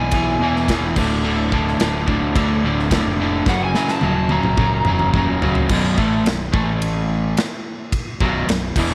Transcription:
Already playing: fingered electric bass B1, overdriven electric guitar E2 B2 E3, lead electric guitar G#5
0.11 overdriven electric guitar E2 B2 E3, kick, ride bell
0.39 fingered electric bass E2, overdriven electric guitar E2 B2 E3
0.56 snare
0.68 overdriven electric guitar E2 B2 E3, kick, snare, ride bell
0.81 fingered electric bass E1
0.96 fingered electric bass D1, overdriven electric guitar D2 A2 D3, kick, crash
1.24 overdriven electric guitar D2 A2 D3
1.52 overdriven electric guitar D2 A2 D3, kick
1.68 snare
1.80 fingered electric bass D1, overdriven electric guitar D2 A2 D3, snare, ride bell
2.06 overdriven electric guitar D2 A2 D3, kick
2.22 fingered electric bass D2
2.35 overdriven electric guitar D2 A2 D3, kick, ride bell
2.64 fingered electric bass D1, overdriven electric guitar D2 A2 D3
2.79 snare
2.91 overdriven electric guitar D2 A2 D3, kick, snare, ride bell
3.05 fingered electric bass F1
3.20 overdriven electric guitar D2 A2 D3
3.46 fingered electric bass F#1, overdriven electric guitar F#2 C#3 F#3, lead electric guitar F#5, kick, snare
3.64 lead electric guitar G#5
3.74 overdriven electric guitar F#2 C#3 F#3, snare
3.88 lead electric guitar A5, snare
4.01 fingered electric bass D#1, overdriven electric guitar F#2 C#3 F#3, high tom
4.29 overdriven electric guitar F#2 C#3 F#3, lead electric guitar A#5, high tom
4.43 fingered electric bass C#1, mid tom
4.57 overdriven electric guitar F#2 C#3 F#3, kick, mid tom
4.85 fingered electric bass E1, overdriven electric guitar F#2 C#3 F#3, mid tom
4.99 mid tom
5.13 fingered electric bass D#1, overdriven electric guitar F#2 C#3 F#3, kick, mid tom
5.41 fingered electric bass C#1, overdriven electric guitar F#2 C#3 F#3, floor tom
5.55 floor tom
5.69 fingered electric bass B0, overdriven electric guitar B1 F#2 B2, kick, crash
5.98 fingered electric bass A1, overdriven electric guitar A2 E3 A3, kick
6.25 fingered electric bass B0, overdriven electric guitar B1 F#2, snare, ride bell
6.53 fingered electric bass A1, overdriven electric guitar A2 E3 A3, kick
6.82 ride bell
7.37 snare, ride bell
7.92 kick, ride bell
8.20 fingered electric bass B0, overdriven electric guitar B1 F#2 B2, kick
8.48 fingered electric bass B0, overdriven electric guitar B1 F#2, snare, ride bell
8.76 fingered electric bass E1, overdriven electric guitar E2 B2 E3, kick, crash

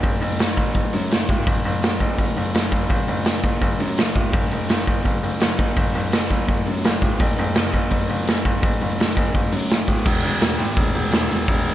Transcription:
0.03 grand piano F#1, kick, open hi-hat
0.22 grand piano F#1, open hi-hat
0.39 grand piano F#1, snare, open hi-hat
0.57 grand piano F#1, kick, open hi-hat
0.74 grand piano F#1, kick, open hi-hat
0.93 grand piano F#2, open hi-hat
1.11 grand piano F#1, snare, open hi-hat
1.29 grand piano C#1, kick, open hi-hat
1.47 grand piano F#1, kick, open hi-hat
1.65 grand piano F#1, open hi-hat
1.83 grand piano F#1, snare, open hi-hat
2.00 grand piano F#1, kick, open hi-hat
2.18 grand piano F#1, kick, open hi-hat
2.36 grand piano F#1, open hi-hat
2.54 grand piano F#1, snare, open hi-hat
2.72 grand piano F#1, kick, open hi-hat
2.90 grand piano F#1, kick, open hi-hat
3.08 grand piano F#1, open hi-hat
3.25 grand piano F#1, snare, open hi-hat
3.44 grand piano F#1, kick, open hi-hat
3.62 grand piano F#1, kick, open hi-hat
3.80 grand piano F#2, open hi-hat
3.98 grand piano F#1, snare, open hi-hat
4.15 grand piano C#1, kick, open hi-hat
4.33 grand piano F#1, kick, open hi-hat
4.51 grand piano F#1, open hi-hat
4.69 grand piano F#1, snare, open hi-hat
4.80 snare
4.87 grand piano F#1, kick, open hi-hat
5.05 grand piano F#1, kick, open hi-hat
5.23 grand piano F#1, open hi-hat
5.40 grand piano F#1, snare, open hi-hat
5.59 grand piano F#1, kick, open hi-hat
5.77 grand piano F#1, kick, open hi-hat
5.94 grand piano F#1, open hi-hat
6.12 grand piano F#1, snare, open hi-hat
6.30 grand piano F#1, kick, open hi-hat
6.48 grand piano F#1, kick, open hi-hat
6.67 grand piano F#2, open hi-hat
6.84 grand piano F#1, snare, open hi-hat
7.02 grand piano C#1, kick, open hi-hat
7.20 grand piano F#1, kick, open hi-hat
7.38 grand piano F#1, open hi-hat
7.55 grand piano F#1, snare, open hi-hat
7.66 snare
7.74 grand piano F#1, kick, open hi-hat
7.91 grand piano F#1, kick, open hi-hat
8.09 grand piano F#1, open hi-hat
8.27 grand piano F#1, snare, open hi-hat
8.45 grand piano F#1, kick, open hi-hat
8.63 grand piano F#1, kick, open hi-hat
8.81 grand piano F#1, open hi-hat
9.00 grand piano F#1, snare, open hi-hat
9.17 grand piano F#1, kick, open hi-hat
9.34 grand piano F#1, kick, open hi-hat
9.52 grand piano F#2, open hi-hat
9.70 grand piano F#1, snare, open hi-hat
9.88 grand piano C#1, kick, open hi-hat
10.05 grand piano E1, kick, crash
10.23 grand piano E1, open hi-hat
10.41 grand piano E1, snare, open hi-hat
10.58 grand piano G#1, open hi-hat
10.76 grand piano E1, kick, open hi-hat
10.95 grand piano E1, open hi-hat
11.12 grand piano E1, snare, open hi-hat
11.29 grand piano E1, open hi-hat
11.48 grand piano E1, kick, open hi-hat
11.67 open hi-hat

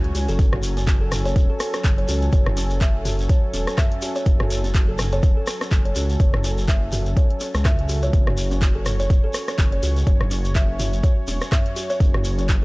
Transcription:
Already playing: detuned saw bass C#2, analog synth pad F#3 C#4 C#5 G#5
0.04 closed hi-hat
0.15 detuned saw bass C#2, kalimba F#4, open hi-hat, shekere
0.29 detuned saw bass F#1, kalimba A4, closed hi-hat, shekere
0.39 detuned saw bass F#1, analog synth pad A4, kick, closed hi-hat, shekere
0.53 kalimba F#4, cross-stick, mid tom
0.63 open hi-hat, shekere
0.77 kalimba C#4, closed hi-hat, shekere
0.87 kick, clap, closed hi-hat
1.01 kalimba A4
1.12 cross-stick, mid tom, open hi-hat, shekere
1.25 kalimba C#5, closed hi-hat, shekere
1.36 detuned saw bass E1, kick, closed hi-hat, shekere
1.50 kalimba A4
1.60 cross-stick, open hi-hat, shekere
1.73 kalimba C#4, cross-stick, closed hi-hat, shekere
1.84 detuned saw bass F#1, kick, clap, closed hi-hat, shekere
1.98 kalimba C#5, closed hi-hat
2.08 detuned saw bass C#2, kalimba F#4, open hi-hat, shekere
2.22 closed hi-hat, shekere
2.32 detuned saw bass F#1, kalimba C#5, kick, closed hi-hat, shekere
2.46 cross-stick, mid tom
2.57 kalimba C#4, open hi-hat, shekere
2.70 closed hi-hat, shekere
2.81 kalimba E5, kick, clap, closed hi-hat, shekere
3.05 kalimba F#4, mid tom, open hi-hat, shekere
3.19 closed hi-hat, shekere
3.29 kalimba C#5, kick, closed hi-hat, shekere
3.54 detuned saw bass E1, kalimba C#4, open hi-hat, shekere
3.67 cross-stick, closed hi-hat, shekere
3.78 kalimba E5, kick, cross-stick, clap, closed hi-hat, mid tom, shekere
3.92 closed hi-hat
4.02 kalimba F#4, open hi-hat, shekere
4.15 kalimba C#5, closed hi-hat, shekere
4.26 detuned saw bass F#1, kick, closed hi-hat, shekere
4.40 kalimba F#4, cross-stick, mid tom
4.50 open hi-hat, shekere
4.64 kalimba C#4, closed hi-hat, shekere
4.75 kick, clap, closed hi-hat, shekere
4.88 kalimba A4
4.99 cross-stick, mid tom, open hi-hat, shekere
5.12 kalimba C#5, closed hi-hat, shekere
5.23 detuned saw bass E1, kick, closed hi-hat, shekere
5.37 kalimba A4
5.47 cross-stick, open hi-hat, shekere
5.61 kalimba C#4, cross-stick, closed hi-hat, shekere
5.71 detuned saw bass F#1, kick, clap, closed hi-hat, shekere
5.85 kalimba C#5, closed hi-hat
5.95 detuned saw bass C#2, kalimba F#4, open hi-hat, shekere
6.09 closed hi-hat, shekere
6.20 detuned saw bass F#1, kalimba C#5, kick, closed hi-hat, shekere
6.34 cross-stick, mid tom
6.44 kalimba C#4, open hi-hat, shekere
6.58 closed hi-hat, shekere
6.68 kalimba E5, kick, clap, closed hi-hat, shekere
6.92 kalimba F#4, mid tom, open hi-hat, shekere
7.06 closed hi-hat, shekere
7.17 kalimba C#5, kick, closed hi-hat, shekere
7.30 closed hi-hat
7.40 kalimba C#4, open hi-hat, shekere
7.55 detuned saw bass C#2, cross-stick, closed hi-hat, shekere
7.65 kalimba E5, kick, cross-stick, clap, closed hi-hat, mid tom, shekere
7.79 closed hi-hat
7.89 kalimba F#4, open hi-hat, shekere
8.02 kalimba C#5, closed hi-hat, shekere
8.13 detuned saw bass F#1, analog synth pad C#5, kick, closed hi-hat, shekere
8.27 kalimba F#4, cross-stick, mid tom
8.38 open hi-hat, shekere
8.51 kalimba C#4, closed hi-hat, shekere
8.61 kick, clap, closed hi-hat, shekere
8.75 kalimba A4
8.86 cross-stick, mid tom, open hi-hat, shekere
9.00 kalimba C#5, closed hi-hat, shekere
9.10 detuned saw bass E1, kick, closed hi-hat, shekere
9.24 kalimba A4
9.34 cross-stick, open hi-hat, shekere
9.48 kalimba C#4, cross-stick, closed hi-hat, shekere
9.58 detuned saw bass F#1, kick, clap, closed hi-hat, shekere
9.72 kalimba C#5, closed hi-hat
9.83 detuned saw bass C#2, kalimba F#4, open hi-hat, shekere
9.96 closed hi-hat, shekere
10.07 detuned saw bass F#1, kalimba C#5, kick, closed hi-hat
10.21 cross-stick, mid tom
10.31 kalimba C#4, open hi-hat, shekere
10.45 closed hi-hat, shekere
10.55 kalimba E5, kick, clap, closed hi-hat, shekere
10.79 kalimba F#4, mid tom, open hi-hat, shekere
10.93 closed hi-hat, shekere
11.03 kalimba C#5, kick, closed hi-hat, shekere
11.27 detuned saw bass E1, kalimba C#4, open hi-hat, shekere
11.41 cross-stick, closed hi-hat, shekere
11.52 kalimba E5, kick, cross-stick, clap, closed hi-hat, mid tom, shekere
11.66 closed hi-hat
11.76 kalimba F#4, open hi-hat, shekere
11.90 kalimba C#5, closed hi-hat, shekere
12.00 detuned saw bass F#1, kick, closed hi-hat, shekere
12.14 kalimba F#4, cross-stick, mid tom
12.24 open hi-hat, shekere
12.38 kalimba C#4, closed hi-hat, shekere
12.49 kick, clap, closed hi-hat, shekere

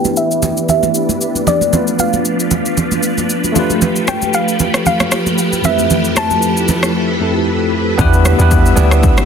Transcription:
Already playing: string machine E3 D4 G4 B4, tine electric piano B3 D4 E4 G4 B4
0.05 high conga, shaker
0.17 synth pluck E5, shaker
0.31 shaker
0.43 high conga, low conga, shaker
0.57 shaker
0.69 synth pluck E5, low conga, shaker
0.83 high conga, shaker
0.94 shaker
1.09 high conga, shaker
1.21 shaker
1.35 high conga, shaker
1.47 synth pluck D5, low conga, shaker
1.61 high conga, shaker
1.70 string machine F3 F4, tine electric piano A3 B3 D4, low conga, shaker
1.75 tine electric piano F4 B4
1.87 shaker
1.99 synth pluck F5, high conga, shaker
2.13 high conga, shaker
2.25 shaker
2.40 shaker
2.51 high conga, low conga, shaker
2.66 shaker
2.77 low conga, shaker
2.91 high conga, shaker
3.03 shaker
3.18 high conga, shaker
3.30 shaker
3.44 high conga, shaker
3.52 string machine F3 A3 G4, tine electric piano A3 D4 F4, low conga, shaker
3.57 tine electric piano G4 B4
3.70 high conga, shaker
3.82 low conga, shaker
3.96 shaker
4.08 synth pluck G5, cross-stick, high conga, shaker
4.22 high conga, shaker
4.34 synth pluck F5, shaker
4.48 shaker
4.60 high conga, low conga, shaker
4.74 cross-stick, shaker
4.86 synth pluck F5, low conga, shaker
5.00 cross-stick, high conga, shaker
5.12 cross-stick, shaker
5.26 high conga, shaker
5.38 shaker
5.53 high conga, shaker
5.61 tine electric piano F2 G3 C4, string machine E4, synth pluck E5, low conga, shaker
5.65 tine electric piano A3 E4 G4 B4
5.78 high conga, shaker
5.90 low conga, shaker
6.04 shaker
6.16 synth pluck A5, cross-stick, high conga, shaker
6.31 high conga, shaker
6.42 shaker
6.57 shaker
6.68 high conga, low conga, shaker
6.83 cross-stick, shaker
7.19 tine electric piano F2 A3 C4 E4 G4 A4
7.97 log drum bass E2, string machine D3 G3 B4 E5, tine electric piano B3 D4 E4 G4 B4, kick, low conga, shaker
8.13 shaker
8.25 cross-stick, high conga, shaker
8.38 log drum bass E2, tine electric piano B3 D4 E4 G4 B4, high conga, shaker
8.51 kick, shaker
8.66 shaker
8.76 log drum bass D2, tine electric piano B3 D4 E4 G4 D5, high conga, low conga, shaker
8.91 cross-stick, shaker
9.03 kick, low conga, shaker
9.18 cross-stick, high conga, shaker

